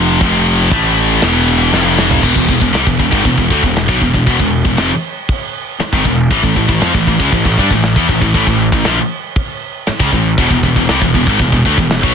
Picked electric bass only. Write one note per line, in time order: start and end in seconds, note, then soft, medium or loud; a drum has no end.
0.00 0.18 F1 loud
0.21 0.68 F1 loud
0.71 1.19 A1 loud
1.23 1.70 E1 loud
1.73 2.20 F1 loud
2.24 2.35 E1 medium
2.36 2.48 E1 medium
2.49 2.61 E1 medium
2.61 2.72 E1 medium
2.73 2.86 C2 loud
2.87 2.99 E1 medium
3.00 3.12 E1 medium
3.12 3.24 G#1 medium
3.25 3.37 E1 medium
3.38 3.50 E1 medium
3.50 3.63 D2 medium
3.63 3.87 E1 medium
3.89 4.01 B1 loud
4.01 4.14 E1 medium
4.14 4.26 E1 medium
4.27 4.39 E1 loud
4.40 4.64 E1 medium
4.65 4.77 E1 medium
4.78 4.90 F1 loud
5.80 muted picked electric bass stroke soft
5.93 6.05 G#1 loud
6.05 6.29 E1 medium
6.31 6.43 A1 loud
6.44 6.55 A1 medium
6.56 6.68 A1 medium
6.68 6.81 A1 medium
6.82 6.94 F2 loud
6.94 7.06 A1 medium
7.07 7.19 A1 medium
7.20 7.32 C#2 loud
7.32 7.44 A1 medium
7.45 7.57 A1 medium
7.58 7.70 G2 medium
7.70 7.94 A1 medium
7.96 8.08 E2 medium
8.09 8.21 A1 medium
8.21 8.33 A1 medium
8.34 8.46 A1 loud
8.47 8.71 A1 medium
8.72 8.84 A1 medium
8.87 8.98 A#1 loud
9.89 muted picked electric bass stroke soft
10.00 10.12 C#2 medium
10.13 10.36 A1 medium
10.38 10.50 E1 loud
10.50 10.62 E1 medium
10.64 10.75 E1 medium
10.76 10.88 E1 medium
10.89 11.01 C2 loud
11.02 11.14 E1 medium
11.14 11.26 E1 medium
11.27 11.39 G#1 medium
11.40 11.52 E1 medium
11.52 11.64 E1 medium
11.65 11.77 D2 medium
11.77 12.01 E1 medium
12.03 12.14 B1 medium